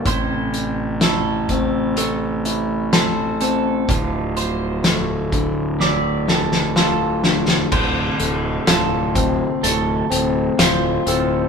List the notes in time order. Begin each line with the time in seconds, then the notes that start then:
Already playing: C4 A4
0.05 A1 A2 C3 E3 E4 C5, kick, closed hi-hat
0.54 closed hi-hat
1.01 E4 A4, snare, closed hi-hat
1.49 C4, kick, closed hi-hat
1.97 A3 A4, closed hi-hat
2.45 E4, closed hi-hat
2.93 A4 C5, snare, closed hi-hat
3.41 C4 A4, closed hi-hat
3.88 D1 D2 D3 F3 F4, kick, closed hi-hat
4.37 C5, closed hi-hat
4.84 A3, snare, closed hi-hat
5.32 D3, kick, closed hi-hat
5.80 A2 D5 E5, snare
6.28 A3 A4, snare
6.52 snare
6.76 F4 A4, snare
7.24 D3, snare
7.48 snare
7.72 D1 D2 C3 F3 A3 D4 C5, kick, crash
8.20 D1 A3, closed hi-hat
8.67 D1 F4 A4, snare, closed hi-hat
9.15 C4, kick, closed hi-hat
9.63 D1 A3 A4, closed hi-hat
10.10 D1 C4, closed hi-hat
10.59 D1 F4 C5, snare, closed hi-hat
11.07 D1 C4 A4, closed hi-hat